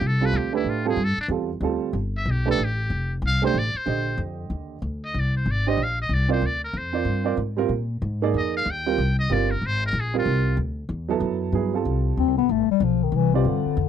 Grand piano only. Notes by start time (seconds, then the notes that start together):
0.21 G3 C4 F4 A4
0.53 A3 D4 G4 B4
0.85 G3 C4 F4 A4
1.30 G3 C4 F4 A4
1.62 G3 C4 F4 A4
2.46 A3 D4 G4 B4
3.42 A3 D4 G4 C5
3.86 D3 G4 C5 D#5
5.67 D4 G4 C5 D#5
6.29 C4 F4 A#4 D5
6.93 C4 F4 A#4 D5
7.24 C4 F4 A#4 D5
7.57 G3 C4 F4 A#4
8.22 A#3 D#4 G#4 D5
8.86 G3 C4 F4 A#4
9.30 G3 C4 F4 A#4
10.14 G3 C4 F4 A#4
11.08 F#3 B3 E4 A4
11.53 F#3 B3 E4 G#4
11.73 G3 C4 F4 A4
13.34 C4 F4 B4 D5